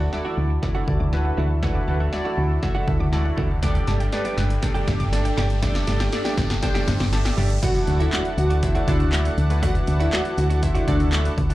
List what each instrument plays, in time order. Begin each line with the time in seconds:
Already playing: analog synth pad D3 D4 E4 F#4 A4, riser
0.00 clean electric guitar E3 A3 D4 F#4, synth arpeggio sound F#5
0.12 analog polysynth E4 F#4 A4 D5, synth arpeggio sound E5, muted clean electric guitar stroke, snare
0.25 clean electric guitar E3 A3 D4 F#4, synth arpeggio sound E6
0.38 fm bass D2
0.50 muted clean electric guitar stroke
0.62 analog polysynth E4 F#4 A4 D5, synth arpeggio sound F#5, muted clean electric guitar stroke, kick, snare
0.75 clean electric guitar E3 A3 D4 F#4
0.88 fm bass D2, kick
1.00 fm bass D2, synth arpeggio sound D6, muted clean electric guitar stroke
1.13 analog polysynth E4 F#4 A4 B4, synth arpeggio sound A5, muted clean electric guitar stroke, snare
1.25 synth arpeggio sound F#5, muted clean electric guitar stroke
1.37 fm bass D2, clean electric guitar E3 A3 D4 F#4, synth arpeggio sound E5
1.50 muted clean electric guitar stroke
1.62 clean electric guitar E3 A3 D4 F#4, analog polysynth E4 F#4 A4 B4, synth arpeggio sound E6, kick, snare
1.75 synth arpeggio sound D6
1.87 fm bass D2, clean electric guitar E3 A3 D4 F#4, synth arpeggio sound A5
2.00 clean electric guitar E3 A3 D4 F#4, synth arpeggio sound F#5
2.12 analog polysynth E4 F#4 A4 D5, synth arpeggio sound E5, muted clean electric guitar stroke, snare
2.25 clean electric guitar E3 A3 D4 F#4, synth arpeggio sound E6
2.38 fm bass D2
2.50 muted clean electric guitar stroke
2.62 analog polysynth E4 F#4 A4 E5, synth arpeggio sound F#5, muted clean electric guitar stroke, kick, snare
2.75 clean electric guitar E3 A3 D4 F#4
2.87 fm bass D2, muted clean electric guitar stroke, kick
3.00 fm bass D2, synth arpeggio sound D6, muted clean electric guitar stroke
3.12 analog polysynth E4 F#4 A4 D5, synth arpeggio sound A5, muted clean electric guitar stroke, snare
3.25 synth arpeggio sound F#5, muted clean electric guitar stroke
3.37 fm bass D2, clean electric guitar E3 A3 D4 F#4, synth arpeggio sound E5, kick
3.50 muted clean electric guitar stroke
3.62 clean electric guitar G3 A3 D4 G4, analog synth pad A3 D4 G4, analog polysynth D4 G4 A4 D5, synth arpeggio sound D7, kick, snare, closed hi-hat
3.75 synth arpeggio sound D6, closed hi-hat
3.87 fm bass G1, clean electric guitar G3 A3 D4 G4, synth arpeggio sound A5, snare, closed hi-hat
4.00 clean electric guitar G3 A3 D4 G4, synth arpeggio sound G5, closed hi-hat
4.12 analog polysynth D4 G4 A4 B4, synth arpeggio sound D5, muted clean electric guitar stroke, snare, closed hi-hat
4.25 clean electric guitar G3 A3 D4 G4, synth arpeggio sound D7, closed hi-hat
4.38 fm bass G1, snare, closed hi-hat
4.50 muted clean electric guitar stroke, closed hi-hat
4.62 analog polysynth D4 G4 A4 D5, synth arpeggio sound G5, muted clean electric guitar stroke, kick, snare, closed hi-hat
4.74 clean electric guitar G3 A3 D4 G4, closed hi-hat
4.87 fm bass G1, muted clean electric guitar stroke, kick, snare, closed hi-hat
5.00 fm bass G1, synth arpeggio sound D6, muted clean electric guitar stroke, closed hi-hat
5.12 analog polysynth D4 G4 A4 D5, synth arpeggio sound A5, muted clean electric guitar stroke, snare, closed hi-hat
5.25 synth arpeggio sound G5, muted clean electric guitar stroke, closed hi-hat
5.37 fm bass G1, clean electric guitar G3 A3 D4 G4, synth arpeggio sound D5, snare, closed hi-hat
5.50 muted clean electric guitar stroke, closed hi-hat
5.62 clean electric guitar G3 A3 D4 G4, analog polysynth D4 G4 A4 D5, synth arpeggio sound D7, kick, snare, closed hi-hat
5.75 synth arpeggio sound D6, snare, closed hi-hat
5.87 fm bass G1, clean electric guitar G3 A3 D4 G4, synth arpeggio sound A5, snare, closed hi-hat
6.00 clean electric guitar G3 A3 D4 G4, synth arpeggio sound G5, snare, closed hi-hat
6.12 analog polysynth D4 G4 A4 D5, synth arpeggio sound D5, muted clean electric guitar stroke, snare, closed hi-hat
6.25 clean electric guitar G3 A3 D4 G4, synth arpeggio sound D7, snare, closed hi-hat
6.38 fm bass G1, kick, snare, closed hi-hat
6.50 muted clean electric guitar stroke, snare, closed hi-hat
6.62 analog polysynth D4 G4 A4 C5, synth arpeggio sound G5, muted clean electric guitar stroke, kick, snare, closed hi-hat
6.75 clean electric guitar G3 A3 D4 G4, snare, closed hi-hat
6.87 fm bass G1, muted clean electric guitar stroke, kick, snare, closed hi-hat
7.00 fm bass G1, synth arpeggio sound D6, muted clean electric guitar stroke, snare, closed hi-hat
7.12 analog polysynth D4 G4 A4 E5, synth arpeggio sound A5, muted clean electric guitar stroke, snare, closed hi-hat
7.25 synth arpeggio sound G5, muted clean electric guitar stroke, snare, closed hi-hat
7.37 fm bass G1, clean electric guitar G3 A3 D4 G4, synth arpeggio sound D5, open hi-hat
7.50 muted clean electric guitar stroke, closed hi-hat
7.62 clean electric guitar E3 A3 D4 F#4, analog polysynth A3 D4 E4 F#4 A4, analog synth pad E4 A4 D5 F#5, synth pluck F#4 F#5, kick, closed hi-hat, crash, impact
7.75 muted clean electric guitar stroke, closed hi-hat
7.87 fm bass D2, muted clean electric guitar stroke, closed hi-hat
8.00 clean electric guitar E3 A3 D4 F#4, synth pluck E4 E5, closed hi-hat
8.12 clean electric guitar E3 A3 D4 F#4, synth pluck F#4 F#5, snare, clap, closed hi-hat
8.25 muted clean electric guitar stroke, closed hi-hat
8.37 fm bass D2, synth pluck F#4 F#5, muted clean electric guitar stroke, closed hi-hat
8.50 clean electric guitar E3 A3 D4 F#4, closed hi-hat
8.63 analog polysynth A3 D4 E4 F#4 C5, synth pluck E4 E5, kick, closed hi-hat
8.75 clean electric guitar E3 A3 D4 F#4, closed hi-hat
8.88 fm bass D2, analog polysynth A3 D4 E4 F#4 A4, synth pluck D4 D5, kick, closed hi-hat
9.00 muted clean electric guitar stroke, closed hi-hat
9.12 muted clean electric guitar stroke, snare, clap, closed hi-hat
9.25 muted clean electric guitar stroke, closed hi-hat
9.38 fm bass D2, closed hi-hat
9.50 analog polysynth A3 D4 E4 F#4 B4, muted clean electric guitar stroke, closed hi-hat
9.62 clean electric guitar E3 A3 D4 F#4, analog polysynth A3 D4 E4 F#4 B4, synth pluck F#4 F#5, kick, closed hi-hat
9.75 muted clean electric guitar stroke, closed hi-hat
9.87 fm bass D2, muted clean electric guitar stroke, closed hi-hat
10.00 clean electric guitar E3 A3 D4 F#4, synth pluck E4 E5, closed hi-hat
10.12 clean electric guitar E3 A3 D4 F#4, synth pluck F#4 F#5, snare, clap, closed hi-hat
10.25 muted clean electric guitar stroke, closed hi-hat
10.37 fm bass D2, synth pluck F#4 F#5, muted clean electric guitar stroke, closed hi-hat
10.50 clean electric guitar E3 A3 D4 F#4, closed hi-hat
10.62 analog polysynth A3 D4 E4 F#4 C5, synth pluck E4 E5, muted clean electric guitar stroke, kick, closed hi-hat
10.75 clean electric guitar E3 A3 D4 F#4, closed hi-hat
10.87 fm bass D2, analog polysynth A3 D4 E4 F#4 A4, synth pluck D4 D5, kick, closed hi-hat
11.00 muted clean electric guitar stroke, closed hi-hat
11.12 muted clean electric guitar stroke, snare, clap, closed hi-hat
11.25 muted clean electric guitar stroke, closed hi-hat
11.38 fm bass D2, kick, closed hi-hat
11.50 analog polysynth A3 D4 E4 F#4 A4, muted clean electric guitar stroke, closed hi-hat